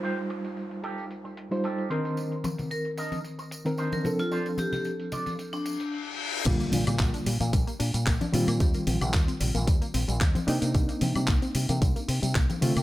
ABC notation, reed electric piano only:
X:1
M:4/4
L:1/16
Q:"Swing 16ths" 1/4=112
K:Bb
V:1 name="Reed electric piano"
[G,EFc]8- [G,EFc]3 [G,EFc]3 [E,CB]2- | [E,CB]8- [E,CB]3 [E,CB]3 [F,CDA]2- | [F,CDA]8- [F,CDA]3 z4 z | [D,G,B,F]6 z8 [E,G,CF]2- |
[E,G,CF]12- [E,G,CF]2 [B,CDE]2- | [B,CDE]12- [B,CDE]2 [D,A,CF]2 |]